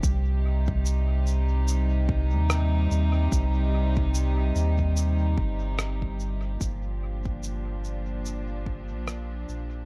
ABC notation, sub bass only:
X:1
M:4/4
L:1/16
Q:"Swing 16ths" 1/4=73
K:Cm
V:1 name="Sub bass" clef=bass
C,,8- C,,3 E,,3 E,,2 | C,,6 E,,4 G,,,6 | G,,,8- G,,,3 B,,,3 B,,,2 |]